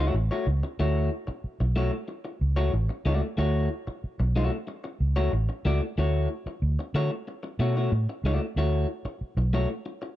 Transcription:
Already playing: C#2
0.00 A3 E4 F#4 C#5
0.14 A1, muted clean electric guitar stroke
0.31 A3 E4 F#4 C#5
0.47 C#2, muted clean electric guitar stroke
0.63 muted clean electric guitar stroke
0.79 D2 A3 E4 F#4 C#5
1.27 muted clean electric guitar stroke, muted fingered electric bass stroke
1.44 muted fingered electric bass stroke
1.60 B1, muted clean electric guitar stroke
1.76 A3 E4 F#4 C#5
1.93 muted clean electric guitar stroke
2.08 muted clean electric guitar stroke
2.25 muted clean electric guitar stroke
2.41 C#2
2.56 A3 E4 F#4 C#5
2.73 A1, muted clean electric guitar stroke
2.89 muted clean electric guitar stroke
3.05 C#2 A3 E4 F#4 D5
3.22 muted clean electric guitar stroke
3.37 D2 A3 E4 F#4 C#5
3.87 muted clean electric guitar stroke, muted fingered electric bass stroke
4.04 muted fingered electric bass stroke
4.20 B1, muted clean electric guitar stroke
4.36 A3 E4 F#4 C#5
4.52 muted clean electric guitar stroke
4.67 muted clean electric guitar stroke
4.84 muted clean electric guitar stroke
5.00 C#2
5.16 A3 E4 F#4 C#5
5.33 A1
5.49 muted clean electric guitar stroke
5.65 C#2 A3 E4 F#4 D5
5.82 muted clean electric guitar stroke
5.98 D2 A3 E4 F#4 C#5
6.46 muted fingered electric bass stroke, muted clean electric guitar stroke
6.62 D2
6.79 muted clean electric guitar stroke
6.94 D3 A3 E4 F#4 C#5
7.12 muted clean electric guitar stroke
7.28 muted clean electric guitar stroke
7.43 muted clean electric guitar stroke
7.59 B2 A3 E4 F#4 C#5
7.76 A3 E4 F#4 C#5
7.92 A2, muted clean electric guitar stroke
8.09 muted clean electric guitar stroke
8.24 C#2 A3 E4 F#4 D5
8.42 muted clean electric guitar stroke
8.56 D2 A3 E4 F#4 C#5
9.05 muted fingered electric bass stroke, muted clean electric guitar stroke
9.21 muted fingered electric bass stroke
9.37 B1, muted clean electric guitar stroke
9.53 A3 E4 F#4 C#5
9.70 muted clean electric guitar stroke
9.86 muted clean electric guitar stroke
10.02 muted clean electric guitar stroke

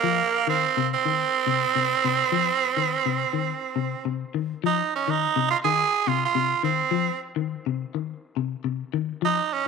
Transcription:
Already playing: A#3
0.03 F3
0.47 D#3 C4
0.77 C3
0.94 C4
1.05 D#3
1.47 C3
1.76 C3
2.05 C3
2.32 F3
2.77 D#3
3.06 C3
3.33 D#3
3.76 C3
4.05 C3
4.34 D#3
4.64 F3 D#4
4.95 C#4
5.08 D#3 D#4
5.36 C3
5.50 F4
5.64 D#3 G#4
6.07 C3 F4
6.25 F4
6.35 C3
6.63 D#3 C4
6.91 F3
7.36 D#3
7.66 C3
7.95 D#3
8.37 C3
8.64 C3
8.94 D#3
9.22 F3 D#4
9.53 C#4

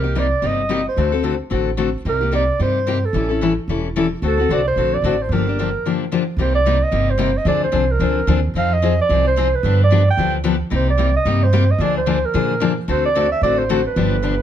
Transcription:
Already playing: C2 A#4
0.03 A#3 D#4 G4
0.15 C3 G3 A#3 D#4 G4 D5
0.42 G1 C3 G3 A#3 D#4 G4
0.47 D#5
0.69 C3 G3 A#3 D#4 G4
0.88 C5
0.96 D2 D3 A3 C4 F#4 A4
1.12 C4 F#4 A4
1.23 D3 A3 C4 F#4 A4
1.50 A1 D3 A3 C4 F#4 A4
1.77 D3 A3 C4 F#4 A4
2.05 C2 C3 G3 A#3 D#4 G4 A#4
2.21 A#3 D#4 G4
2.31 C3 G3 A#3 D#4 G4 D5
2.59 G2 C3 G3 A#3 D#4 G4 C5
2.87 C3 G3 A#3 D#4 G4
3.05 A4
3.13 A1 E3 G3 C#4 E4 A4
3.29 C#4 E4 A4
3.41 E3 G3 C#4 E4 A4
3.67 E1 E3 G3 C#4 E4 A4
3.96 E3 G3 C#4 E4 A4
4.22 D2 D3 A3 C4 F#4 A4
4.27 A4
4.38 C4 F#4 A4
4.49 C2 D3 A3 C4 F#4 A4 D5
4.67 C5
4.76 A#1 D3 A3 C4 F#4 A4
4.94 D5
5.02 A1 D3 A3 C4 F#4 A4
5.22 C5
5.29 G1 D3 F3 A#3 D4 G4 A#4
5.47 A#3 D4 G4
5.59 D3 F3 A#3 D4 G4
5.85 D3 F3 A#3 D4 G4
6.12 D3 F3 A#3 D4 G4
6.37 C2 C3 G3 A#3 D#4 G4
6.41 C5
6.55 D5
6.66 C3 G3 A#3 D#4 G4
6.83 D#5
6.91 G1 C3 G3 A#3 D#4 G4
7.10 C5
7.18 C3 G3 A#3 D#4 G4
7.37 D#5
7.45 D2 D3 F3 C4 D4 G#4 D5
7.64 C5
7.72 C2 D3 F3 C4 D4 G#4
7.91 A#4
7.99 D2 D3 F3 C4 D4 G#4
8.27 D#2 D3 F3 C4 D4 G#4
8.54 F2 F3 C4 D#4 G#4 F5
8.73 D#5
8.82 F3 C4 D#4 G#4
9.01 D5
9.09 C2 F3 C4 D#4 G#4
9.27 C5
9.36 F3 C4 D#4 G#4
9.55 B4
9.63 G2 D3 F3 B3 D4 G4
9.83 D5
9.90 D3 F3 B3 D4 G4
10.10 G5
10.17 D2 D3 F3 B3 D4 G4
10.44 D3 F3 B3 D4 G4
10.70 C2 C3 G3 A#3 D#4 G4
10.75 C5
10.90 D5
10.98 C3 G3 A#3 D#4 G4
11.16 D#5
11.25 G2 C3 G3 A#3 D#4 G4
11.43 C5
11.53 C3 G3 A#3 D#4 G4
11.71 D#5
11.78 D2 D3 F3 A#3 D4 G#4 D5
11.97 C5
12.06 D3 F3 A#3 D4 G#4
12.25 A#4
12.34 A#2 D3 F3 A#3 D4 G#4
12.60 D3 F3 A#3 D4 G#4
12.88 D2 D3 A3 C4 F#4 A4 C5
13.05 D5
13.15 D3 A3 C4 F#4 A4
13.32 E5
13.41 A1 D3 A3 C4 F#4 A4 D5
13.58 C5
13.69 D3 A3 C4 F#4 A4
13.87 B4
13.96 G1 D3 F3 B3 D4 G4
14.22 D3 F3 B3 D4 G4

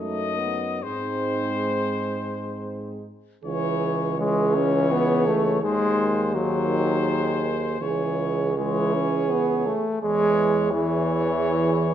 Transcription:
Already playing: F#2 A3 D#4 D#5
0.39 B3
0.83 G#2 G#3 C4 D#4 C5
3.44 C#2 E3 G#4 C#5
4.18 E3 G#3 G#4 C#5
4.55 C#4
4.92 B3
5.26 A3
5.62 D#2 D#3 G#3 G#4 C5
6.34 D#3 F#3 G#4 C5
7.80 C#2 E3 G#4 C#5
8.57 E3 G#3 G#4 C#5
8.94 C#4
9.30 B3
9.66 A3
10.02 E2 E3 G#3 G#4 C#5
10.71 E3 G#4 C#5

